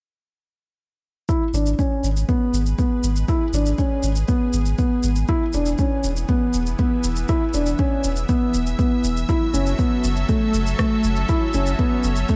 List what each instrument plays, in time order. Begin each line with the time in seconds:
1.29 analog synth pad G#3, felt piano E4, kick, shaker
1.53 sub bass G#1, felt piano D4, shaker
1.66 shaker
1.79 felt piano C#4, kick, shaker
1.85 analog synth pad G#4 B4
2.03 sub bass G#1, shaker
2.17 shaker
2.29 felt piano B3, kick, shaker
2.53 sub bass G#1, shaker
2.66 shaker
2.79 felt piano B3, kick, shaker
3.03 sub bass G#1, shaker
3.16 shaker
3.28 felt piano E4, kick, shaker
3.53 sub bass G#1, felt piano D4, shaker
3.66 shaker
3.78 felt piano C#4, kick, shaker
4.03 sub bass G#1, shaker
4.16 shaker
4.28 felt piano B3, kick, shaker
4.53 sub bass G#1, shaker
4.66 shaker
4.78 felt piano B3, kick, shaker
5.03 sub bass G#1, shaker
5.16 shaker
5.28 analog synth pad E3, felt piano E4, kick, shaker
5.50 analog synth pad B3, shaker
5.54 sub bass E1, felt piano D4
5.66 shaker
5.78 felt piano C#4, kick, shaker
6.04 sub bass E1, shaker
6.17 shaker
6.29 felt piano B3, kick, shaker
6.54 sub bass E1, shaker
6.67 analog synth pad E5, shaker
6.79 felt piano B3, kick, shaker
7.04 sub bass E1, shaker
7.16 shaker
7.29 felt piano E4, kick, shaker
7.54 sub bass E1, felt piano D4, shaker
7.66 shaker
7.78 felt piano C#4, kick, shaker
8.04 sub bass E1, shaker
8.16 shaker
8.29 felt piano B3, kick, shaker
8.54 sub bass E1, shaker
8.67 shaker
8.79 felt piano B3, kick, shaker
9.04 sub bass E1, shaker
9.17 shaker
9.29 analog synth pad F#3, felt piano E4, kick, shaker
9.54 sub bass F#1, felt piano C#4, analog synth pad C#4 A4, shaker
9.67 shaker
9.79 felt piano B3, kick, shaker
10.04 sub bass F#1, shaker
10.16 shaker
10.29 felt piano A3, kick, shaker
10.54 sub bass F#1, shaker
10.67 shaker
10.79 felt piano A3, kick, cross-stick, shaker
11.04 sub bass F#1, shaker
11.16 shaker
11.29 felt piano E4, kick, shaker
11.54 sub bass F#1, felt piano C#4, shaker
11.66 shaker
11.79 felt piano B3, kick, shaker
12.04 sub bass F#1, shaker
12.16 shaker
12.29 felt piano A3, kick, shaker